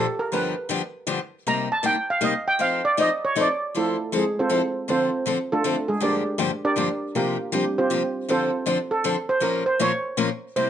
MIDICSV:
0, 0, Header, 1, 3, 480
1, 0, Start_track
1, 0, Tempo, 379027
1, 396, Time_signature, 3, 2, 24, 8
1, 13547, End_track
2, 0, Start_track
2, 0, Title_t, "Steel pan"
2, 0, Program_c, 0, 114
2, 0, Note_on_c, 0, 69, 78
2, 235, Note_off_c, 0, 69, 0
2, 244, Note_on_c, 0, 70, 87
2, 404, Note_off_c, 0, 70, 0
2, 420, Note_on_c, 0, 71, 85
2, 1320, Note_off_c, 0, 71, 0
2, 1871, Note_on_c, 0, 82, 89
2, 2152, Note_off_c, 0, 82, 0
2, 2177, Note_on_c, 0, 81, 102
2, 2333, Note_off_c, 0, 81, 0
2, 2353, Note_on_c, 0, 79, 93
2, 2633, Note_off_c, 0, 79, 0
2, 2663, Note_on_c, 0, 77, 94
2, 2816, Note_off_c, 0, 77, 0
2, 2834, Note_on_c, 0, 75, 85
2, 3114, Note_off_c, 0, 75, 0
2, 3136, Note_on_c, 0, 79, 103
2, 3292, Note_off_c, 0, 79, 0
2, 3308, Note_on_c, 0, 77, 94
2, 3591, Note_off_c, 0, 77, 0
2, 3608, Note_on_c, 0, 74, 94
2, 3769, Note_off_c, 0, 74, 0
2, 3812, Note_on_c, 0, 75, 104
2, 4083, Note_off_c, 0, 75, 0
2, 4111, Note_on_c, 0, 73, 92
2, 4261, Note_off_c, 0, 73, 0
2, 4321, Note_on_c, 0, 74, 91
2, 4480, Note_off_c, 0, 74, 0
2, 4773, Note_on_c, 0, 65, 53
2, 4776, Note_on_c, 0, 64, 58
2, 4779, Note_on_c, 0, 57, 55
2, 4780, Note_on_c, 0, 69, 69
2, 5197, Note_off_c, 0, 65, 0
2, 5198, Note_off_c, 0, 64, 0
2, 5200, Note_off_c, 0, 57, 0
2, 5200, Note_off_c, 0, 69, 0
2, 5272, Note_on_c, 0, 56, 59
2, 5272, Note_on_c, 0, 68, 68
2, 5534, Note_off_c, 0, 56, 0
2, 5534, Note_off_c, 0, 68, 0
2, 5563, Note_on_c, 0, 72, 84
2, 5570, Note_on_c, 0, 60, 68
2, 5572, Note_on_c, 0, 65, 69
2, 5573, Note_on_c, 0, 69, 69
2, 6148, Note_off_c, 0, 72, 0
2, 6151, Note_off_c, 0, 60, 0
2, 6153, Note_off_c, 0, 65, 0
2, 6153, Note_off_c, 0, 69, 0
2, 6205, Note_on_c, 0, 69, 64
2, 6206, Note_on_c, 0, 72, 84
2, 6216, Note_on_c, 0, 65, 66
2, 6221, Note_on_c, 0, 60, 66
2, 6480, Note_off_c, 0, 69, 0
2, 6481, Note_off_c, 0, 72, 0
2, 6486, Note_off_c, 0, 65, 0
2, 6488, Note_off_c, 0, 60, 0
2, 6994, Note_on_c, 0, 69, 90
2, 7002, Note_on_c, 0, 57, 69
2, 7002, Note_on_c, 0, 65, 69
2, 7004, Note_on_c, 0, 62, 69
2, 7419, Note_off_c, 0, 69, 0
2, 7423, Note_off_c, 0, 65, 0
2, 7424, Note_off_c, 0, 57, 0
2, 7425, Note_off_c, 0, 62, 0
2, 7451, Note_on_c, 0, 68, 87
2, 7462, Note_on_c, 0, 56, 69
2, 7610, Note_off_c, 0, 68, 0
2, 7616, Note_off_c, 0, 56, 0
2, 7635, Note_on_c, 0, 74, 79
2, 7640, Note_on_c, 0, 67, 67
2, 7647, Note_on_c, 0, 70, 67
2, 7649, Note_on_c, 0, 62, 64
2, 8352, Note_off_c, 0, 74, 0
2, 8355, Note_off_c, 0, 67, 0
2, 8358, Note_off_c, 0, 70, 0
2, 8359, Note_off_c, 0, 62, 0
2, 8419, Note_on_c, 0, 62, 70
2, 8419, Note_on_c, 0, 74, 94
2, 8421, Note_on_c, 0, 67, 70
2, 8422, Note_on_c, 0, 70, 75
2, 8574, Note_off_c, 0, 62, 0
2, 8574, Note_off_c, 0, 74, 0
2, 8575, Note_off_c, 0, 67, 0
2, 8576, Note_off_c, 0, 70, 0
2, 9065, Note_on_c, 0, 70, 72
2, 9076, Note_on_c, 0, 65, 57
2, 9078, Note_on_c, 0, 67, 60
2, 9086, Note_on_c, 0, 58, 59
2, 9501, Note_off_c, 0, 70, 0
2, 9506, Note_off_c, 0, 65, 0
2, 9508, Note_off_c, 0, 67, 0
2, 9512, Note_off_c, 0, 58, 0
2, 9556, Note_on_c, 0, 55, 48
2, 9556, Note_on_c, 0, 60, 45
2, 9559, Note_on_c, 0, 67, 62
2, 9561, Note_on_c, 0, 62, 48
2, 9834, Note_off_c, 0, 55, 0
2, 9834, Note_off_c, 0, 60, 0
2, 9835, Note_off_c, 0, 67, 0
2, 9837, Note_off_c, 0, 62, 0
2, 9855, Note_on_c, 0, 72, 86
2, 9857, Note_on_c, 0, 67, 70
2, 9864, Note_on_c, 0, 60, 72
2, 9864, Note_on_c, 0, 65, 75
2, 10451, Note_off_c, 0, 72, 0
2, 10452, Note_off_c, 0, 67, 0
2, 10455, Note_off_c, 0, 65, 0
2, 10456, Note_off_c, 0, 60, 0
2, 10518, Note_on_c, 0, 72, 87
2, 10523, Note_on_c, 0, 69, 71
2, 10524, Note_on_c, 0, 65, 68
2, 10526, Note_on_c, 0, 60, 69
2, 10689, Note_off_c, 0, 72, 0
2, 10692, Note_off_c, 0, 69, 0
2, 10693, Note_off_c, 0, 65, 0
2, 10695, Note_off_c, 0, 60, 0
2, 11285, Note_on_c, 0, 69, 84
2, 11721, Note_off_c, 0, 69, 0
2, 11767, Note_on_c, 0, 72, 100
2, 11926, Note_off_c, 0, 72, 0
2, 11941, Note_on_c, 0, 70, 81
2, 12225, Note_off_c, 0, 70, 0
2, 12235, Note_on_c, 0, 72, 95
2, 12399, Note_off_c, 0, 72, 0
2, 12430, Note_on_c, 0, 73, 96
2, 12861, Note_off_c, 0, 73, 0
2, 13375, Note_on_c, 0, 72, 83
2, 13547, Note_off_c, 0, 72, 0
2, 13547, End_track
3, 0, Start_track
3, 0, Title_t, "Steel-string acoustic guitar"
3, 0, Program_c, 1, 25
3, 402, Note_on_c, 1, 43, 65
3, 409, Note_on_c, 1, 53, 77
3, 418, Note_on_c, 1, 59, 76
3, 419, Note_on_c, 1, 50, 67
3, 425, Note_on_c, 1, 62, 70
3, 425, Note_on_c, 1, 67, 76
3, 672, Note_off_c, 1, 43, 0
3, 676, Note_off_c, 1, 53, 0
3, 680, Note_off_c, 1, 59, 0
3, 681, Note_off_c, 1, 50, 0
3, 684, Note_off_c, 1, 62, 0
3, 684, Note_off_c, 1, 67, 0
3, 872, Note_on_c, 1, 43, 91
3, 878, Note_on_c, 1, 50, 92
3, 881, Note_on_c, 1, 53, 86
3, 890, Note_on_c, 1, 59, 100
3, 893, Note_on_c, 1, 62, 99
3, 893, Note_on_c, 1, 67, 105
3, 1019, Note_off_c, 1, 43, 0
3, 1022, Note_off_c, 1, 50, 0
3, 1024, Note_off_c, 1, 53, 0
3, 1028, Note_off_c, 1, 59, 0
3, 1030, Note_off_c, 1, 62, 0
3, 1030, Note_off_c, 1, 67, 0
3, 1351, Note_on_c, 1, 43, 85
3, 1351, Note_on_c, 1, 50, 94
3, 1356, Note_on_c, 1, 53, 97
3, 1358, Note_on_c, 1, 59, 92
3, 1363, Note_on_c, 1, 62, 101
3, 1365, Note_on_c, 1, 67, 92
3, 1499, Note_off_c, 1, 50, 0
3, 1500, Note_off_c, 1, 43, 0
3, 1502, Note_off_c, 1, 53, 0
3, 1503, Note_off_c, 1, 59, 0
3, 1505, Note_off_c, 1, 62, 0
3, 1506, Note_off_c, 1, 67, 0
3, 1856, Note_on_c, 1, 48, 65
3, 1857, Note_on_c, 1, 55, 68
3, 1861, Note_on_c, 1, 58, 71
3, 1862, Note_on_c, 1, 63, 76
3, 1870, Note_on_c, 1, 67, 87
3, 2121, Note_off_c, 1, 48, 0
3, 2121, Note_off_c, 1, 55, 0
3, 2123, Note_off_c, 1, 58, 0
3, 2124, Note_off_c, 1, 63, 0
3, 2128, Note_off_c, 1, 67, 0
3, 2317, Note_on_c, 1, 48, 98
3, 2325, Note_on_c, 1, 55, 88
3, 2327, Note_on_c, 1, 58, 91
3, 2327, Note_on_c, 1, 63, 96
3, 2335, Note_on_c, 1, 67, 98
3, 2463, Note_off_c, 1, 48, 0
3, 2467, Note_off_c, 1, 55, 0
3, 2468, Note_off_c, 1, 58, 0
3, 2468, Note_off_c, 1, 63, 0
3, 2472, Note_off_c, 1, 67, 0
3, 2796, Note_on_c, 1, 48, 92
3, 2796, Note_on_c, 1, 55, 94
3, 2803, Note_on_c, 1, 58, 86
3, 2807, Note_on_c, 1, 63, 93
3, 2808, Note_on_c, 1, 67, 106
3, 2943, Note_off_c, 1, 48, 0
3, 2943, Note_off_c, 1, 55, 0
3, 2946, Note_off_c, 1, 58, 0
3, 2949, Note_off_c, 1, 63, 0
3, 2949, Note_off_c, 1, 67, 0
3, 3279, Note_on_c, 1, 53, 74
3, 3284, Note_on_c, 1, 60, 75
3, 3292, Note_on_c, 1, 63, 72
3, 3296, Note_on_c, 1, 69, 83
3, 3553, Note_off_c, 1, 53, 0
3, 3556, Note_off_c, 1, 60, 0
3, 3560, Note_off_c, 1, 63, 0
3, 3562, Note_off_c, 1, 69, 0
3, 3766, Note_on_c, 1, 53, 84
3, 3772, Note_on_c, 1, 63, 110
3, 3773, Note_on_c, 1, 60, 93
3, 3779, Note_on_c, 1, 69, 102
3, 3909, Note_off_c, 1, 53, 0
3, 3912, Note_off_c, 1, 60, 0
3, 3912, Note_off_c, 1, 63, 0
3, 3915, Note_off_c, 1, 69, 0
3, 4249, Note_on_c, 1, 53, 84
3, 4258, Note_on_c, 1, 63, 104
3, 4259, Note_on_c, 1, 60, 98
3, 4268, Note_on_c, 1, 69, 101
3, 4390, Note_off_c, 1, 53, 0
3, 4395, Note_off_c, 1, 60, 0
3, 4395, Note_off_c, 1, 63, 0
3, 4400, Note_off_c, 1, 69, 0
3, 4743, Note_on_c, 1, 53, 64
3, 4750, Note_on_c, 1, 60, 76
3, 4754, Note_on_c, 1, 69, 76
3, 4757, Note_on_c, 1, 64, 71
3, 5006, Note_off_c, 1, 53, 0
3, 5009, Note_off_c, 1, 60, 0
3, 5011, Note_off_c, 1, 69, 0
3, 5013, Note_off_c, 1, 64, 0
3, 5221, Note_on_c, 1, 53, 85
3, 5229, Note_on_c, 1, 60, 87
3, 5235, Note_on_c, 1, 64, 93
3, 5236, Note_on_c, 1, 69, 105
3, 5357, Note_off_c, 1, 53, 0
3, 5361, Note_off_c, 1, 60, 0
3, 5364, Note_off_c, 1, 64, 0
3, 5364, Note_off_c, 1, 69, 0
3, 5692, Note_on_c, 1, 53, 89
3, 5697, Note_on_c, 1, 60, 98
3, 5700, Note_on_c, 1, 64, 87
3, 5705, Note_on_c, 1, 69, 90
3, 5832, Note_off_c, 1, 53, 0
3, 5835, Note_off_c, 1, 60, 0
3, 5836, Note_off_c, 1, 64, 0
3, 5839, Note_off_c, 1, 69, 0
3, 6179, Note_on_c, 1, 50, 73
3, 6184, Note_on_c, 1, 60, 70
3, 6185, Note_on_c, 1, 53, 66
3, 6190, Note_on_c, 1, 62, 79
3, 6195, Note_on_c, 1, 69, 81
3, 6444, Note_off_c, 1, 50, 0
3, 6447, Note_off_c, 1, 53, 0
3, 6447, Note_off_c, 1, 60, 0
3, 6449, Note_off_c, 1, 62, 0
3, 6452, Note_off_c, 1, 69, 0
3, 6656, Note_on_c, 1, 50, 87
3, 6668, Note_on_c, 1, 53, 86
3, 6669, Note_on_c, 1, 60, 96
3, 6671, Note_on_c, 1, 62, 97
3, 6680, Note_on_c, 1, 69, 104
3, 6794, Note_off_c, 1, 50, 0
3, 6800, Note_off_c, 1, 53, 0
3, 6801, Note_off_c, 1, 60, 0
3, 6802, Note_off_c, 1, 62, 0
3, 6807, Note_off_c, 1, 69, 0
3, 7145, Note_on_c, 1, 50, 82
3, 7145, Note_on_c, 1, 53, 94
3, 7152, Note_on_c, 1, 60, 92
3, 7157, Note_on_c, 1, 62, 97
3, 7161, Note_on_c, 1, 69, 99
3, 7279, Note_off_c, 1, 50, 0
3, 7279, Note_off_c, 1, 53, 0
3, 7282, Note_off_c, 1, 60, 0
3, 7285, Note_off_c, 1, 62, 0
3, 7287, Note_off_c, 1, 69, 0
3, 7604, Note_on_c, 1, 43, 71
3, 7604, Note_on_c, 1, 50, 77
3, 7608, Note_on_c, 1, 53, 74
3, 7614, Note_on_c, 1, 58, 71
3, 7617, Note_on_c, 1, 67, 80
3, 7618, Note_on_c, 1, 62, 70
3, 7876, Note_off_c, 1, 43, 0
3, 7876, Note_off_c, 1, 50, 0
3, 7878, Note_off_c, 1, 53, 0
3, 7881, Note_off_c, 1, 58, 0
3, 7883, Note_off_c, 1, 62, 0
3, 7883, Note_off_c, 1, 67, 0
3, 8081, Note_on_c, 1, 43, 94
3, 8081, Note_on_c, 1, 50, 88
3, 8087, Note_on_c, 1, 53, 87
3, 8091, Note_on_c, 1, 62, 97
3, 8095, Note_on_c, 1, 58, 97
3, 8095, Note_on_c, 1, 67, 104
3, 8227, Note_off_c, 1, 43, 0
3, 8227, Note_off_c, 1, 50, 0
3, 8229, Note_off_c, 1, 53, 0
3, 8231, Note_off_c, 1, 62, 0
3, 8233, Note_off_c, 1, 67, 0
3, 8234, Note_off_c, 1, 58, 0
3, 8558, Note_on_c, 1, 43, 81
3, 8566, Note_on_c, 1, 50, 89
3, 8567, Note_on_c, 1, 53, 99
3, 8580, Note_on_c, 1, 58, 91
3, 8580, Note_on_c, 1, 62, 98
3, 8581, Note_on_c, 1, 67, 93
3, 8705, Note_off_c, 1, 43, 0
3, 8709, Note_off_c, 1, 50, 0
3, 8709, Note_off_c, 1, 53, 0
3, 8715, Note_off_c, 1, 58, 0
3, 8716, Note_off_c, 1, 62, 0
3, 8716, Note_off_c, 1, 67, 0
3, 9056, Note_on_c, 1, 48, 75
3, 9057, Note_on_c, 1, 53, 68
3, 9060, Note_on_c, 1, 58, 69
3, 9067, Note_on_c, 1, 65, 72
3, 9067, Note_on_c, 1, 67, 68
3, 9321, Note_off_c, 1, 48, 0
3, 9322, Note_off_c, 1, 53, 0
3, 9323, Note_off_c, 1, 58, 0
3, 9327, Note_off_c, 1, 65, 0
3, 9327, Note_off_c, 1, 67, 0
3, 9525, Note_on_c, 1, 48, 88
3, 9525, Note_on_c, 1, 53, 93
3, 9533, Note_on_c, 1, 58, 92
3, 9536, Note_on_c, 1, 65, 90
3, 9541, Note_on_c, 1, 67, 99
3, 9668, Note_off_c, 1, 48, 0
3, 9668, Note_off_c, 1, 53, 0
3, 9672, Note_off_c, 1, 58, 0
3, 9673, Note_off_c, 1, 65, 0
3, 9675, Note_off_c, 1, 67, 0
3, 10004, Note_on_c, 1, 48, 83
3, 10013, Note_on_c, 1, 53, 91
3, 10013, Note_on_c, 1, 58, 82
3, 10017, Note_on_c, 1, 65, 94
3, 10023, Note_on_c, 1, 67, 91
3, 10147, Note_off_c, 1, 48, 0
3, 10151, Note_off_c, 1, 53, 0
3, 10151, Note_off_c, 1, 58, 0
3, 10153, Note_off_c, 1, 65, 0
3, 10156, Note_off_c, 1, 67, 0
3, 10492, Note_on_c, 1, 53, 72
3, 10495, Note_on_c, 1, 50, 71
3, 10499, Note_on_c, 1, 62, 79
3, 10503, Note_on_c, 1, 60, 70
3, 10511, Note_on_c, 1, 69, 72
3, 10758, Note_off_c, 1, 53, 0
3, 10760, Note_off_c, 1, 50, 0
3, 10762, Note_off_c, 1, 62, 0
3, 10764, Note_off_c, 1, 60, 0
3, 10768, Note_off_c, 1, 69, 0
3, 10964, Note_on_c, 1, 50, 82
3, 10971, Note_on_c, 1, 53, 102
3, 10973, Note_on_c, 1, 60, 100
3, 10979, Note_on_c, 1, 62, 96
3, 10987, Note_on_c, 1, 69, 91
3, 11106, Note_off_c, 1, 50, 0
3, 11109, Note_off_c, 1, 53, 0
3, 11111, Note_off_c, 1, 60, 0
3, 11114, Note_off_c, 1, 62, 0
3, 11117, Note_off_c, 1, 69, 0
3, 11449, Note_on_c, 1, 50, 92
3, 11452, Note_on_c, 1, 53, 84
3, 11457, Note_on_c, 1, 60, 98
3, 11458, Note_on_c, 1, 62, 95
3, 11459, Note_on_c, 1, 69, 94
3, 11588, Note_off_c, 1, 50, 0
3, 11589, Note_off_c, 1, 53, 0
3, 11592, Note_off_c, 1, 60, 0
3, 11592, Note_off_c, 1, 62, 0
3, 11593, Note_off_c, 1, 69, 0
3, 11909, Note_on_c, 1, 46, 77
3, 11915, Note_on_c, 1, 53, 74
3, 11916, Note_on_c, 1, 58, 69
3, 11922, Note_on_c, 1, 70, 76
3, 11924, Note_on_c, 1, 61, 78
3, 11926, Note_on_c, 1, 65, 78
3, 12185, Note_off_c, 1, 46, 0
3, 12189, Note_off_c, 1, 53, 0
3, 12189, Note_off_c, 1, 58, 0
3, 12192, Note_off_c, 1, 70, 0
3, 12193, Note_off_c, 1, 61, 0
3, 12194, Note_off_c, 1, 65, 0
3, 12404, Note_on_c, 1, 46, 95
3, 12407, Note_on_c, 1, 53, 92
3, 12410, Note_on_c, 1, 58, 97
3, 12417, Note_on_c, 1, 61, 97
3, 12417, Note_on_c, 1, 65, 106
3, 12428, Note_on_c, 1, 70, 99
3, 12545, Note_off_c, 1, 46, 0
3, 12546, Note_off_c, 1, 53, 0
3, 12548, Note_off_c, 1, 58, 0
3, 12551, Note_off_c, 1, 61, 0
3, 12551, Note_off_c, 1, 65, 0
3, 12557, Note_off_c, 1, 70, 0
3, 12881, Note_on_c, 1, 46, 94
3, 12885, Note_on_c, 1, 58, 88
3, 12886, Note_on_c, 1, 61, 99
3, 12887, Note_on_c, 1, 53, 87
3, 12890, Note_on_c, 1, 65, 91
3, 12896, Note_on_c, 1, 70, 106
3, 13023, Note_off_c, 1, 46, 0
3, 13025, Note_off_c, 1, 58, 0
3, 13025, Note_off_c, 1, 61, 0
3, 13026, Note_off_c, 1, 53, 0
3, 13028, Note_off_c, 1, 65, 0
3, 13030, Note_off_c, 1, 70, 0
3, 13376, Note_on_c, 1, 48, 80
3, 13378, Note_on_c, 1, 58, 77
3, 13380, Note_on_c, 1, 55, 73
3, 13383, Note_on_c, 1, 67, 74
3, 13384, Note_on_c, 1, 64, 80
3, 13547, Note_off_c, 1, 48, 0
3, 13547, Note_off_c, 1, 55, 0
3, 13547, Note_off_c, 1, 58, 0
3, 13547, Note_off_c, 1, 64, 0
3, 13547, Note_off_c, 1, 67, 0
3, 13547, End_track
0, 0, End_of_file